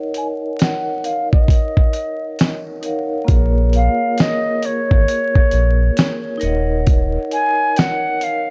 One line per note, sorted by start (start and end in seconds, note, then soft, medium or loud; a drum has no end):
0.00 2.78 D#4 medium
0.00 2.79 A#4 medium
0.00 2.80 C#5 medium
0.00 2.81 D#5 medium
0.00 2.82 F#5 medium
0.14 0.27 G#5 medium
0.14 closed hi-hat soft
0.59 1.07 F#5 medium
0.59 snare loud
0.59 closed hi-hat medium
1.04 1.32 F5 medium
1.04 closed hi-hat medium
1.32 2.63 D#5 medium
1.32 kick medium
1.48 kick medium
1.48 closed hi-hat medium
1.77 kick medium
1.93 closed hi-hat medium
2.39 snare loud
2.39 closed hi-hat medium
2.82 3.28 D#4 medium
2.82 3.28 A#4 medium
2.82 3.29 C#5 soft
2.82 3.29 F5 soft
2.82 closed hi-hat medium
2.86 3.30 F#5 medium
3.24 6.36 A#3 medium
3.24 6.37 F4 medium
3.24 kick loud
3.24 closed hi-hat medium
3.29 3.89 A#1 loud
3.29 6.38 G#4 medium
3.29 6.38 A#4 medium
3.34 6.41 C#5 medium
3.73 4.23 F5 loud
3.73 closed hi-hat medium
4.18 4.67 D#5 medium
4.18 snare loud
4.18 closed hi-hat medium
4.63 6.44 C#5 medium
4.63 closed hi-hat medium
4.91 5.06 G#1 medium
4.91 kick medium
5.08 closed hi-hat medium
5.35 kick medium
5.51 5.90 A#1 medium
5.51 closed hi-hat medium
5.97 snare loud
5.97 closed hi-hat medium
6.37 8.50 D#4 medium
6.37 8.50 A#4 medium
6.37 closed hi-hat medium
6.42 7.17 D#1 medium
6.42 8.50 C#5 medium
6.42 8.50 D#5 medium
6.47 8.50 F#5 medium
6.87 kick loud
6.87 closed hi-hat medium
7.31 7.80 G#5 loud
7.31 closed hi-hat medium
7.77 8.25 F#5 medium
7.77 snare loud
7.77 closed hi-hat medium
8.21 8.50 F5 medium
8.21 closed hi-hat medium